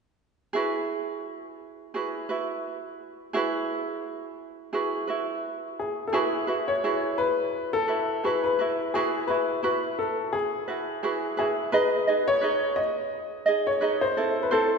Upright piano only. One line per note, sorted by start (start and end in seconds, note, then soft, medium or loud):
5.79 6.09 G#4 medium
6.07 6.14 A4 soft
6.14 6.70 G#4 medium
6.68 7.20 C#5 medium
7.18 7.69 B4 medium
7.73 8.25 A4 medium
8.25 8.42 B4 medium
8.44 8.95 B4 medium
8.94 9.30 G#4 medium
9.27 9.60 B4 medium
9.64 9.99 B4 medium
9.99 10.34 A4 medium
10.33 11.33 G#4 medium
11.39 11.74 G#4 medium
11.73 12.28 B4 medium
12.28 12.79 C#5 medium
12.76 13.68 D#5 medium
13.67 14.02 C#5 medium
14.01 14.42 C5 medium
14.43 14.50 B4 medium
14.52 14.78 A4 medium